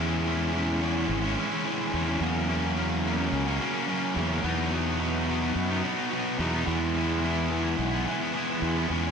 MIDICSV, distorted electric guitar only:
0, 0, Header, 1, 2, 480
1, 0, Start_track
1, 0, Tempo, 557103
1, 1906, Time_signature, 4, 2, 24, 8
1, 7849, End_track
2, 0, Start_track
2, 0, Title_t, "Distorted electric guitar"
2, 0, Program_c, 0, 30
2, 0, Note_on_c, 0, 52, 96
2, 0, Note_on_c, 0, 56, 95
2, 0, Note_on_c, 0, 61, 104
2, 8, Note_on_c, 0, 64, 107
2, 214, Note_off_c, 0, 52, 0
2, 218, Note_on_c, 0, 52, 73
2, 219, Note_off_c, 0, 56, 0
2, 229, Note_on_c, 0, 56, 84
2, 234, Note_off_c, 0, 61, 0
2, 237, Note_on_c, 0, 61, 76
2, 246, Note_off_c, 0, 64, 0
2, 250, Note_on_c, 0, 64, 85
2, 450, Note_off_c, 0, 52, 0
2, 453, Note_on_c, 0, 52, 104
2, 460, Note_off_c, 0, 56, 0
2, 470, Note_on_c, 0, 56, 97
2, 475, Note_off_c, 0, 61, 0
2, 478, Note_on_c, 0, 61, 105
2, 481, Note_off_c, 0, 64, 0
2, 484, Note_on_c, 0, 64, 103
2, 690, Note_off_c, 0, 52, 0
2, 694, Note_on_c, 0, 52, 80
2, 698, Note_off_c, 0, 56, 0
2, 708, Note_on_c, 0, 56, 88
2, 711, Note_off_c, 0, 61, 0
2, 714, Note_on_c, 0, 61, 94
2, 718, Note_off_c, 0, 64, 0
2, 722, Note_on_c, 0, 64, 83
2, 809, Note_off_c, 0, 64, 0
2, 819, Note_on_c, 0, 64, 63
2, 823, Note_off_c, 0, 61, 0
2, 834, Note_off_c, 0, 56, 0
2, 834, Note_on_c, 0, 61, 64
2, 845, Note_on_c, 0, 56, 59
2, 1045, Note_off_c, 0, 64, 0
2, 1055, Note_on_c, 0, 64, 74
2, 1060, Note_off_c, 0, 52, 0
2, 1063, Note_off_c, 0, 61, 0
2, 1073, Note_on_c, 0, 61, 72
2, 1078, Note_off_c, 0, 56, 0
2, 1089, Note_on_c, 0, 56, 57
2, 1176, Note_on_c, 0, 52, 83
2, 1179, Note_off_c, 0, 56, 0
2, 1185, Note_off_c, 0, 61, 0
2, 1189, Note_on_c, 0, 56, 85
2, 1196, Note_off_c, 0, 64, 0
2, 1196, Note_on_c, 0, 61, 88
2, 1206, Note_on_c, 0, 64, 85
2, 1285, Note_off_c, 0, 64, 0
2, 1295, Note_on_c, 0, 64, 81
2, 1302, Note_off_c, 0, 61, 0
2, 1312, Note_off_c, 0, 56, 0
2, 1313, Note_on_c, 0, 61, 75
2, 1322, Note_on_c, 0, 56, 65
2, 1409, Note_off_c, 0, 52, 0
2, 1419, Note_on_c, 0, 52, 114
2, 1420, Note_off_c, 0, 56, 0
2, 1429, Note_off_c, 0, 61, 0
2, 1430, Note_on_c, 0, 56, 112
2, 1440, Note_on_c, 0, 61, 108
2, 1441, Note_off_c, 0, 64, 0
2, 1451, Note_on_c, 0, 64, 107
2, 1648, Note_off_c, 0, 52, 0
2, 1658, Note_off_c, 0, 56, 0
2, 1658, Note_on_c, 0, 52, 90
2, 1667, Note_off_c, 0, 61, 0
2, 1669, Note_on_c, 0, 56, 91
2, 1676, Note_off_c, 0, 64, 0
2, 1678, Note_on_c, 0, 61, 96
2, 1687, Note_on_c, 0, 64, 95
2, 1766, Note_off_c, 0, 64, 0
2, 1776, Note_on_c, 0, 64, 80
2, 1783, Note_off_c, 0, 61, 0
2, 1792, Note_off_c, 0, 56, 0
2, 1793, Note_on_c, 0, 61, 77
2, 1803, Note_on_c, 0, 56, 67
2, 1887, Note_off_c, 0, 64, 0
2, 1888, Note_off_c, 0, 52, 0
2, 1892, Note_on_c, 0, 42, 104
2, 1895, Note_off_c, 0, 61, 0
2, 1900, Note_off_c, 0, 56, 0
2, 1901, Note_on_c, 0, 49, 105
2, 1910, Note_on_c, 0, 54, 108
2, 1916, Note_on_c, 0, 58, 113
2, 1924, Note_on_c, 0, 61, 125
2, 2120, Note_off_c, 0, 49, 0
2, 2130, Note_on_c, 0, 49, 74
2, 2137, Note_off_c, 0, 54, 0
2, 2138, Note_off_c, 0, 58, 0
2, 2140, Note_on_c, 0, 54, 85
2, 2149, Note_off_c, 0, 61, 0
2, 2149, Note_on_c, 0, 58, 93
2, 2159, Note_on_c, 0, 61, 86
2, 2362, Note_off_c, 0, 42, 0
2, 2368, Note_off_c, 0, 49, 0
2, 2373, Note_on_c, 0, 42, 99
2, 2379, Note_on_c, 0, 49, 100
2, 2384, Note_off_c, 0, 54, 0
2, 2384, Note_off_c, 0, 58, 0
2, 2387, Note_on_c, 0, 54, 103
2, 2389, Note_off_c, 0, 61, 0
2, 2394, Note_on_c, 0, 58, 114
2, 2400, Note_on_c, 0, 61, 101
2, 2602, Note_off_c, 0, 49, 0
2, 2612, Note_on_c, 0, 49, 79
2, 2622, Note_off_c, 0, 54, 0
2, 2622, Note_off_c, 0, 58, 0
2, 2625, Note_on_c, 0, 54, 86
2, 2632, Note_on_c, 0, 58, 97
2, 2633, Note_off_c, 0, 61, 0
2, 2643, Note_on_c, 0, 61, 100
2, 2721, Note_off_c, 0, 61, 0
2, 2731, Note_on_c, 0, 61, 68
2, 2738, Note_off_c, 0, 58, 0
2, 2749, Note_on_c, 0, 58, 68
2, 2751, Note_off_c, 0, 54, 0
2, 2761, Note_on_c, 0, 54, 62
2, 2859, Note_off_c, 0, 42, 0
2, 2963, Note_off_c, 0, 61, 0
2, 2973, Note_on_c, 0, 61, 76
2, 2979, Note_off_c, 0, 49, 0
2, 2981, Note_off_c, 0, 58, 0
2, 2991, Note_on_c, 0, 58, 67
2, 2993, Note_off_c, 0, 54, 0
2, 3003, Note_on_c, 0, 54, 58
2, 3088, Note_off_c, 0, 54, 0
2, 3088, Note_on_c, 0, 49, 77
2, 3098, Note_on_c, 0, 54, 81
2, 3100, Note_off_c, 0, 58, 0
2, 3110, Note_off_c, 0, 61, 0
2, 3111, Note_on_c, 0, 58, 89
2, 3120, Note_on_c, 0, 61, 93
2, 3195, Note_off_c, 0, 61, 0
2, 3205, Note_on_c, 0, 61, 83
2, 3214, Note_off_c, 0, 58, 0
2, 3224, Note_on_c, 0, 58, 77
2, 3227, Note_off_c, 0, 54, 0
2, 3237, Note_on_c, 0, 54, 69
2, 3326, Note_off_c, 0, 49, 0
2, 3328, Note_on_c, 0, 42, 111
2, 3335, Note_off_c, 0, 54, 0
2, 3337, Note_on_c, 0, 49, 105
2, 3340, Note_off_c, 0, 58, 0
2, 3346, Note_on_c, 0, 54, 108
2, 3347, Note_off_c, 0, 61, 0
2, 3350, Note_on_c, 0, 58, 116
2, 3357, Note_on_c, 0, 61, 127
2, 3564, Note_off_c, 0, 49, 0
2, 3575, Note_off_c, 0, 54, 0
2, 3575, Note_on_c, 0, 49, 94
2, 3585, Note_on_c, 0, 54, 88
2, 3586, Note_off_c, 0, 58, 0
2, 3591, Note_off_c, 0, 61, 0
2, 3596, Note_on_c, 0, 58, 96
2, 3602, Note_on_c, 0, 61, 92
2, 3681, Note_off_c, 0, 61, 0
2, 3691, Note_on_c, 0, 61, 83
2, 3697, Note_off_c, 0, 58, 0
2, 3708, Note_on_c, 0, 58, 76
2, 3711, Note_off_c, 0, 54, 0
2, 3721, Note_on_c, 0, 54, 62
2, 3803, Note_off_c, 0, 42, 0
2, 3804, Note_off_c, 0, 61, 0
2, 3806, Note_off_c, 0, 49, 0
2, 3813, Note_off_c, 0, 58, 0
2, 3813, Note_on_c, 0, 47, 92
2, 3814, Note_off_c, 0, 54, 0
2, 3824, Note_on_c, 0, 54, 118
2, 3833, Note_on_c, 0, 59, 105
2, 3842, Note_on_c, 0, 63, 119
2, 4046, Note_off_c, 0, 47, 0
2, 4055, Note_off_c, 0, 54, 0
2, 4056, Note_on_c, 0, 47, 73
2, 4065, Note_on_c, 0, 54, 83
2, 4072, Note_off_c, 0, 59, 0
2, 4076, Note_on_c, 0, 59, 78
2, 4078, Note_off_c, 0, 63, 0
2, 4082, Note_on_c, 0, 63, 84
2, 4285, Note_off_c, 0, 47, 0
2, 4295, Note_off_c, 0, 54, 0
2, 4295, Note_on_c, 0, 47, 83
2, 4306, Note_on_c, 0, 54, 87
2, 4309, Note_off_c, 0, 59, 0
2, 4312, Note_on_c, 0, 59, 100
2, 4319, Note_off_c, 0, 63, 0
2, 4323, Note_on_c, 0, 63, 113
2, 4527, Note_off_c, 0, 47, 0
2, 4537, Note_on_c, 0, 47, 74
2, 4538, Note_off_c, 0, 54, 0
2, 4549, Note_on_c, 0, 54, 89
2, 4558, Note_off_c, 0, 59, 0
2, 4561, Note_on_c, 0, 59, 87
2, 4563, Note_off_c, 0, 63, 0
2, 4566, Note_on_c, 0, 63, 96
2, 4640, Note_off_c, 0, 63, 0
2, 4651, Note_on_c, 0, 63, 73
2, 4666, Note_off_c, 0, 59, 0
2, 4669, Note_on_c, 0, 59, 62
2, 4672, Note_off_c, 0, 54, 0
2, 4682, Note_on_c, 0, 54, 62
2, 4887, Note_off_c, 0, 63, 0
2, 4897, Note_on_c, 0, 63, 70
2, 4902, Note_off_c, 0, 47, 0
2, 4910, Note_off_c, 0, 59, 0
2, 4913, Note_on_c, 0, 59, 68
2, 4916, Note_off_c, 0, 54, 0
2, 4926, Note_on_c, 0, 54, 57
2, 5015, Note_on_c, 0, 47, 87
2, 5016, Note_off_c, 0, 54, 0
2, 5026, Note_on_c, 0, 54, 84
2, 5033, Note_off_c, 0, 63, 0
2, 5034, Note_off_c, 0, 59, 0
2, 5038, Note_on_c, 0, 59, 86
2, 5043, Note_on_c, 0, 63, 88
2, 5128, Note_off_c, 0, 63, 0
2, 5139, Note_on_c, 0, 63, 79
2, 5152, Note_off_c, 0, 59, 0
2, 5156, Note_off_c, 0, 54, 0
2, 5156, Note_on_c, 0, 59, 74
2, 5167, Note_on_c, 0, 54, 61
2, 5251, Note_off_c, 0, 47, 0
2, 5261, Note_on_c, 0, 47, 98
2, 5264, Note_off_c, 0, 54, 0
2, 5274, Note_on_c, 0, 54, 105
2, 5277, Note_off_c, 0, 63, 0
2, 5278, Note_off_c, 0, 59, 0
2, 5282, Note_on_c, 0, 59, 105
2, 5287, Note_on_c, 0, 63, 117
2, 5488, Note_off_c, 0, 47, 0
2, 5498, Note_off_c, 0, 54, 0
2, 5498, Note_on_c, 0, 47, 81
2, 5508, Note_on_c, 0, 54, 95
2, 5514, Note_off_c, 0, 59, 0
2, 5518, Note_on_c, 0, 59, 82
2, 5519, Note_off_c, 0, 63, 0
2, 5530, Note_on_c, 0, 63, 86
2, 5616, Note_off_c, 0, 63, 0
2, 5626, Note_on_c, 0, 63, 78
2, 5640, Note_off_c, 0, 59, 0
2, 5644, Note_on_c, 0, 59, 65
2, 5646, Note_off_c, 0, 54, 0
2, 5656, Note_on_c, 0, 54, 57
2, 5728, Note_off_c, 0, 47, 0
2, 5732, Note_off_c, 0, 63, 0
2, 5738, Note_on_c, 0, 52, 99
2, 5742, Note_off_c, 0, 54, 0
2, 5745, Note_on_c, 0, 56, 104
2, 5755, Note_off_c, 0, 59, 0
2, 5758, Note_on_c, 0, 59, 97
2, 5767, Note_on_c, 0, 64, 104
2, 5974, Note_off_c, 0, 52, 0
2, 5977, Note_on_c, 0, 52, 69
2, 5986, Note_off_c, 0, 56, 0
2, 5989, Note_on_c, 0, 56, 75
2, 5997, Note_off_c, 0, 59, 0
2, 6000, Note_on_c, 0, 59, 80
2, 6005, Note_off_c, 0, 64, 0
2, 6009, Note_on_c, 0, 64, 85
2, 6215, Note_off_c, 0, 52, 0
2, 6219, Note_on_c, 0, 52, 104
2, 6228, Note_off_c, 0, 56, 0
2, 6232, Note_on_c, 0, 56, 92
2, 6236, Note_off_c, 0, 59, 0
2, 6239, Note_on_c, 0, 59, 101
2, 6243, Note_off_c, 0, 64, 0
2, 6246, Note_on_c, 0, 64, 120
2, 6451, Note_off_c, 0, 52, 0
2, 6455, Note_on_c, 0, 52, 83
2, 6462, Note_off_c, 0, 56, 0
2, 6466, Note_on_c, 0, 56, 76
2, 6469, Note_off_c, 0, 59, 0
2, 6473, Note_on_c, 0, 59, 94
2, 6478, Note_off_c, 0, 64, 0
2, 6481, Note_on_c, 0, 64, 96
2, 6572, Note_off_c, 0, 64, 0
2, 6576, Note_on_c, 0, 64, 80
2, 6589, Note_off_c, 0, 59, 0
2, 6592, Note_on_c, 0, 59, 69
2, 6596, Note_off_c, 0, 56, 0
2, 6607, Note_on_c, 0, 56, 62
2, 6812, Note_off_c, 0, 64, 0
2, 6816, Note_on_c, 0, 64, 74
2, 6830, Note_off_c, 0, 59, 0
2, 6833, Note_on_c, 0, 59, 65
2, 6835, Note_off_c, 0, 56, 0
2, 6845, Note_on_c, 0, 56, 60
2, 6933, Note_off_c, 0, 52, 0
2, 6937, Note_on_c, 0, 52, 89
2, 6938, Note_off_c, 0, 56, 0
2, 6949, Note_on_c, 0, 56, 83
2, 6955, Note_off_c, 0, 59, 0
2, 6958, Note_on_c, 0, 59, 98
2, 6964, Note_off_c, 0, 64, 0
2, 6967, Note_on_c, 0, 64, 88
2, 7057, Note_off_c, 0, 64, 0
2, 7060, Note_on_c, 0, 64, 76
2, 7078, Note_off_c, 0, 59, 0
2, 7080, Note_off_c, 0, 56, 0
2, 7081, Note_on_c, 0, 59, 73
2, 7090, Note_on_c, 0, 56, 59
2, 7175, Note_off_c, 0, 52, 0
2, 7178, Note_on_c, 0, 52, 96
2, 7184, Note_off_c, 0, 56, 0
2, 7194, Note_on_c, 0, 56, 102
2, 7199, Note_off_c, 0, 59, 0
2, 7203, Note_on_c, 0, 59, 109
2, 7207, Note_off_c, 0, 64, 0
2, 7211, Note_on_c, 0, 64, 122
2, 7422, Note_off_c, 0, 52, 0
2, 7425, Note_on_c, 0, 52, 83
2, 7426, Note_off_c, 0, 56, 0
2, 7437, Note_on_c, 0, 56, 93
2, 7442, Note_off_c, 0, 59, 0
2, 7446, Note_on_c, 0, 59, 87
2, 7451, Note_off_c, 0, 64, 0
2, 7454, Note_on_c, 0, 64, 93
2, 7546, Note_off_c, 0, 64, 0
2, 7549, Note_on_c, 0, 64, 68
2, 7561, Note_off_c, 0, 59, 0
2, 7565, Note_on_c, 0, 59, 71
2, 7568, Note_off_c, 0, 56, 0
2, 7579, Note_on_c, 0, 56, 63
2, 7663, Note_off_c, 0, 52, 0
2, 7665, Note_off_c, 0, 56, 0
2, 7667, Note_on_c, 0, 52, 100
2, 7675, Note_on_c, 0, 56, 107
2, 7684, Note_off_c, 0, 59, 0
2, 7687, Note_on_c, 0, 61, 115
2, 7690, Note_off_c, 0, 64, 0
2, 7694, Note_on_c, 0, 64, 106
2, 7849, Note_off_c, 0, 52, 0
2, 7849, Note_off_c, 0, 56, 0
2, 7849, Note_off_c, 0, 61, 0
2, 7849, Note_off_c, 0, 64, 0
2, 7849, End_track
0, 0, End_of_file